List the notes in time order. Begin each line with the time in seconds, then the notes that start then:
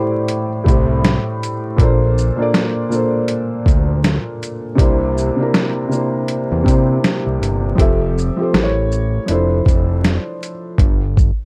Already playing: A2 A3 E4 G4 C5 D5
0.28 closed hi-hat
0.64 C2 A2 A3 E4, kick
0.68 G4 C5, closed hi-hat, shaker
1.04 snare, closed hi-hat
1.43 closed hi-hat, shaker
1.76 A#1 A#2 A#3 D4, kick, closed hi-hat
1.81 A4 C5
2.18 shaker
2.36 A#2 A#3 D4
2.40 A4 D5
2.54 snare, closed hi-hat
2.89 A#2 A#3 D4, shaker
2.93 A4 C5
3.28 closed hi-hat
3.66 D2, kick, closed hi-hat, shaker
4.04 snare, closed hi-hat
4.43 closed hi-hat, shaker
4.75 C2 C3 A#3 D4, kick, closed hi-hat
4.80 E4 C5
5.18 shaker
5.36 C3 A#3 D4
5.41 E4 A#4
5.54 snare, closed hi-hat
5.88 C3 A#3 D4, shaker
5.93 E4 C5
6.28 closed hi-hat
6.52 E2
6.63 C3 A#3 D4, kick
6.68 E4 C5, closed hi-hat, shaker
7.04 snare, closed hi-hat
7.26 C2
7.41 G1, closed hi-hat, shaker
7.75 F1 F3 C4 G4, kick
7.79 A4 E5, closed hi-hat
8.18 shaker
8.36 F3 C4 G4
8.41 A4 C5
8.51 A1 A3 E4 G4, snare, closed hi-hat
8.56 A#4 C5
8.64 C#5
8.92 shaker
9.26 F1 F3 D4 E4, closed hi-hat
9.31 A4 C5
9.66 F1, kick, closed hi-hat, shaker
10.04 snare, closed hi-hat
10.43 closed hi-hat, shaker
10.78 G1, kick, closed hi-hat
11.17 kick, shaker